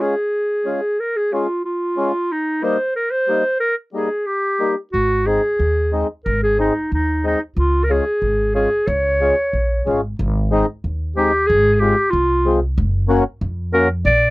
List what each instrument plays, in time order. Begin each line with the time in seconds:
0.00 accordion G#3 C#4 F4, clarinet G#4
0.65 accordion G#3 C#4 F4
1.00 clarinet A#4
1.16 clarinet G#4
1.33 accordion G#3 C#4 F4, clarinet F4
1.65 clarinet F4
1.97 accordion G#3 C#4 F4
2.32 clarinet D#4
2.62 accordion G3 A#3 D#4, clarinet C5
2.96 clarinet A#4
3.11 clarinet C5
3.28 accordion G3 A#3 D#4
3.60 clarinet A#4
3.93 accordion G3 A#3 D#4, clarinet G#4
4.26 clarinet G4
4.60 accordion G3 A#3 D#4
4.93 upright bass G#1, clarinet F#4
5.26 accordion G#3 C4 D#4, clarinet G#4
5.59 upright bass D#2
5.92 accordion G#3 C4 D#4
6.25 upright bass G#1, clarinet A#4
6.43 clarinet G#4
6.58 accordion G#3 C4 D#4, clarinet D#4
6.92 upright bass D#2, clarinet D#4
7.24 accordion G#3 C4 D#4, clarinet D#4
7.57 upright bass C#2, clarinet F4
7.84 clarinet A#4
7.90 accordion G#3 C#4 F4, clarinet G#4
8.22 upright bass G#1
8.54 accordion G#3 C#4 F4, clarinet G#4
8.87 upright bass C#2, clarinet C#5
9.20 accordion G#3 C#4 F4
9.53 upright bass A#1
9.86 upright bass G#1, accordion G#3 C#4 F4
10.19 upright bass G#1
10.51 accordion G#3 C4 D#4
10.84 upright bass D#2
11.16 accordion G#3 C4 D#4, clarinet G4
11.47 upright bass G#1, clarinet G#4
11.74 clarinet G#4
11.80 accordion G#3 C4 F4, clarinet G4
12.10 upright bass C2, clarinet F4
12.45 accordion G#3 C4 F4
12.78 upright bass F#1
13.08 accordion A#3 C#4 F#4
13.41 upright bass F2
13.73 accordion A#3 C#4 F#4, clarinet A#4
14.05 upright bass A#1, clarinet D5